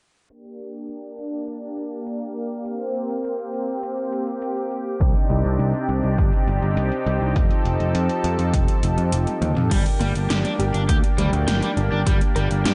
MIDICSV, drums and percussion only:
0, 0, Header, 1, 2, 480
1, 0, Start_track
1, 0, Key_signature, -2, "minor"
1, 0, Tempo, 588235
1, 246, Time_signature, 4, 2, 24, 8
1, 10397, End_track
2, 0, Start_track
2, 0, Title_t, "Drums"
2, 245, Note_on_c, 9, 42, 83
2, 327, Note_off_c, 9, 42, 0
2, 366, Note_on_c, 9, 42, 34
2, 448, Note_off_c, 9, 42, 0
2, 486, Note_on_c, 9, 42, 60
2, 568, Note_off_c, 9, 42, 0
2, 606, Note_on_c, 9, 42, 37
2, 687, Note_off_c, 9, 42, 0
2, 726, Note_on_c, 9, 42, 86
2, 808, Note_off_c, 9, 42, 0
2, 847, Note_on_c, 9, 42, 39
2, 928, Note_off_c, 9, 42, 0
2, 967, Note_on_c, 9, 42, 62
2, 1048, Note_off_c, 9, 42, 0
2, 1086, Note_on_c, 9, 42, 39
2, 1168, Note_off_c, 9, 42, 0
2, 1206, Note_on_c, 9, 42, 82
2, 1287, Note_off_c, 9, 42, 0
2, 1326, Note_on_c, 9, 42, 37
2, 1408, Note_off_c, 9, 42, 0
2, 1446, Note_on_c, 9, 42, 60
2, 1528, Note_off_c, 9, 42, 0
2, 1567, Note_on_c, 9, 42, 36
2, 1648, Note_off_c, 9, 42, 0
2, 1687, Note_on_c, 9, 42, 87
2, 1768, Note_off_c, 9, 42, 0
2, 1806, Note_on_c, 9, 42, 35
2, 1888, Note_off_c, 9, 42, 0
2, 1926, Note_on_c, 9, 42, 36
2, 2007, Note_off_c, 9, 42, 0
2, 2166, Note_on_c, 9, 42, 84
2, 2248, Note_off_c, 9, 42, 0
2, 2286, Note_on_c, 9, 42, 37
2, 2368, Note_off_c, 9, 42, 0
2, 2406, Note_on_c, 9, 42, 62
2, 2487, Note_off_c, 9, 42, 0
2, 2527, Note_on_c, 9, 42, 38
2, 2608, Note_off_c, 9, 42, 0
2, 2646, Note_on_c, 9, 42, 88
2, 2727, Note_off_c, 9, 42, 0
2, 2765, Note_on_c, 9, 42, 39
2, 2847, Note_off_c, 9, 42, 0
2, 2886, Note_on_c, 9, 42, 60
2, 2967, Note_off_c, 9, 42, 0
2, 3006, Note_on_c, 9, 42, 39
2, 3087, Note_off_c, 9, 42, 0
2, 3125, Note_on_c, 9, 42, 84
2, 3207, Note_off_c, 9, 42, 0
2, 3245, Note_on_c, 9, 42, 38
2, 3327, Note_off_c, 9, 42, 0
2, 3366, Note_on_c, 9, 42, 60
2, 3448, Note_off_c, 9, 42, 0
2, 3485, Note_on_c, 9, 42, 37
2, 3567, Note_off_c, 9, 42, 0
2, 3605, Note_on_c, 9, 42, 86
2, 3687, Note_off_c, 9, 42, 0
2, 3725, Note_on_c, 9, 42, 37
2, 3807, Note_off_c, 9, 42, 0
2, 3845, Note_on_c, 9, 42, 37
2, 3927, Note_off_c, 9, 42, 0
2, 4085, Note_on_c, 9, 36, 112
2, 4085, Note_on_c, 9, 42, 80
2, 4166, Note_off_c, 9, 42, 0
2, 4167, Note_off_c, 9, 36, 0
2, 4205, Note_on_c, 9, 42, 37
2, 4287, Note_off_c, 9, 42, 0
2, 4325, Note_on_c, 9, 42, 62
2, 4407, Note_off_c, 9, 42, 0
2, 4445, Note_on_c, 9, 42, 38
2, 4527, Note_off_c, 9, 42, 0
2, 4565, Note_on_c, 9, 42, 85
2, 4647, Note_off_c, 9, 42, 0
2, 4685, Note_on_c, 9, 42, 38
2, 4767, Note_off_c, 9, 42, 0
2, 4806, Note_on_c, 9, 42, 60
2, 4887, Note_off_c, 9, 42, 0
2, 4926, Note_on_c, 9, 42, 39
2, 5008, Note_off_c, 9, 42, 0
2, 5045, Note_on_c, 9, 36, 113
2, 5046, Note_on_c, 9, 42, 82
2, 5127, Note_off_c, 9, 36, 0
2, 5127, Note_off_c, 9, 42, 0
2, 5166, Note_on_c, 9, 42, 37
2, 5247, Note_off_c, 9, 42, 0
2, 5285, Note_on_c, 9, 42, 60
2, 5367, Note_off_c, 9, 42, 0
2, 5405, Note_on_c, 9, 42, 37
2, 5487, Note_off_c, 9, 42, 0
2, 5524, Note_on_c, 9, 42, 88
2, 5606, Note_off_c, 9, 42, 0
2, 5645, Note_on_c, 9, 42, 36
2, 5727, Note_off_c, 9, 42, 0
2, 5766, Note_on_c, 9, 42, 38
2, 5847, Note_off_c, 9, 42, 0
2, 6005, Note_on_c, 9, 36, 112
2, 6005, Note_on_c, 9, 42, 80
2, 6086, Note_off_c, 9, 42, 0
2, 6087, Note_off_c, 9, 36, 0
2, 6125, Note_on_c, 9, 42, 36
2, 6207, Note_off_c, 9, 42, 0
2, 6246, Note_on_c, 9, 42, 60
2, 6327, Note_off_c, 9, 42, 0
2, 6366, Note_on_c, 9, 42, 36
2, 6448, Note_off_c, 9, 42, 0
2, 6485, Note_on_c, 9, 42, 86
2, 6567, Note_off_c, 9, 42, 0
2, 6605, Note_on_c, 9, 42, 38
2, 6687, Note_off_c, 9, 42, 0
2, 6725, Note_on_c, 9, 42, 61
2, 6807, Note_off_c, 9, 42, 0
2, 6845, Note_on_c, 9, 42, 37
2, 6926, Note_off_c, 9, 42, 0
2, 6965, Note_on_c, 9, 36, 114
2, 6965, Note_on_c, 9, 42, 83
2, 7047, Note_off_c, 9, 36, 0
2, 7047, Note_off_c, 9, 42, 0
2, 7086, Note_on_c, 9, 42, 35
2, 7167, Note_off_c, 9, 42, 0
2, 7206, Note_on_c, 9, 42, 57
2, 7287, Note_off_c, 9, 42, 0
2, 7326, Note_on_c, 9, 42, 36
2, 7408, Note_off_c, 9, 42, 0
2, 7446, Note_on_c, 9, 42, 83
2, 7527, Note_off_c, 9, 42, 0
2, 7566, Note_on_c, 9, 42, 35
2, 7566, Note_on_c, 9, 48, 47
2, 7647, Note_off_c, 9, 42, 0
2, 7647, Note_off_c, 9, 48, 0
2, 7686, Note_on_c, 9, 42, 36
2, 7686, Note_on_c, 9, 47, 70
2, 7768, Note_off_c, 9, 42, 0
2, 7768, Note_off_c, 9, 47, 0
2, 7805, Note_on_c, 9, 45, 73
2, 7887, Note_off_c, 9, 45, 0
2, 7925, Note_on_c, 9, 36, 107
2, 7926, Note_on_c, 9, 42, 85
2, 7926, Note_on_c, 9, 49, 87
2, 8007, Note_off_c, 9, 36, 0
2, 8007, Note_off_c, 9, 42, 0
2, 8007, Note_off_c, 9, 49, 0
2, 8045, Note_on_c, 9, 42, 39
2, 8127, Note_off_c, 9, 42, 0
2, 8165, Note_on_c, 9, 42, 65
2, 8247, Note_off_c, 9, 42, 0
2, 8286, Note_on_c, 9, 42, 39
2, 8367, Note_off_c, 9, 42, 0
2, 8406, Note_on_c, 9, 38, 111
2, 8406, Note_on_c, 9, 42, 94
2, 8488, Note_off_c, 9, 38, 0
2, 8488, Note_off_c, 9, 42, 0
2, 8526, Note_on_c, 9, 42, 40
2, 8607, Note_off_c, 9, 42, 0
2, 8647, Note_on_c, 9, 42, 63
2, 8728, Note_off_c, 9, 42, 0
2, 8766, Note_on_c, 9, 42, 41
2, 8848, Note_off_c, 9, 42, 0
2, 8885, Note_on_c, 9, 36, 115
2, 8886, Note_on_c, 9, 42, 91
2, 8967, Note_off_c, 9, 36, 0
2, 8968, Note_off_c, 9, 42, 0
2, 9006, Note_on_c, 9, 42, 39
2, 9088, Note_off_c, 9, 42, 0
2, 9126, Note_on_c, 9, 42, 64
2, 9126, Note_on_c, 9, 47, 53
2, 9208, Note_off_c, 9, 42, 0
2, 9208, Note_off_c, 9, 47, 0
2, 9246, Note_on_c, 9, 42, 39
2, 9328, Note_off_c, 9, 42, 0
2, 9365, Note_on_c, 9, 38, 117
2, 9365, Note_on_c, 9, 42, 96
2, 9447, Note_off_c, 9, 38, 0
2, 9447, Note_off_c, 9, 42, 0
2, 9486, Note_on_c, 9, 42, 37
2, 9568, Note_off_c, 9, 42, 0
2, 9606, Note_on_c, 9, 42, 39
2, 9687, Note_off_c, 9, 42, 0
2, 9846, Note_on_c, 9, 36, 114
2, 9846, Note_on_c, 9, 42, 90
2, 9927, Note_off_c, 9, 36, 0
2, 9928, Note_off_c, 9, 42, 0
2, 9966, Note_on_c, 9, 42, 39
2, 10047, Note_off_c, 9, 42, 0
2, 10085, Note_on_c, 9, 42, 64
2, 10167, Note_off_c, 9, 42, 0
2, 10206, Note_on_c, 9, 42, 40
2, 10288, Note_off_c, 9, 42, 0
2, 10326, Note_on_c, 9, 38, 117
2, 10326, Note_on_c, 9, 42, 93
2, 10397, Note_off_c, 9, 38, 0
2, 10397, Note_off_c, 9, 42, 0
2, 10397, End_track
0, 0, End_of_file